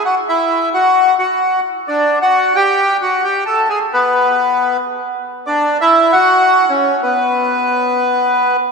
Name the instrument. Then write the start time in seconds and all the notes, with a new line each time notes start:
bandoneon
0.05 F#4 F#5
0.29 E4 E5
0.74 F#4 F#5
1.19 F#4 F#5
1.88 D4 D5
2.22 F#4 F#5
2.56 G4 G5
3.01 F#4 F#5
3.24 G4 G5
3.46 A4 A5
3.70 G#4 G#5
3.93 B3 B4
5.47 D4 D5
5.81 E4 E5
6.13 F#4 F#5
6.70 C#4 C#5
7.03 B3 B4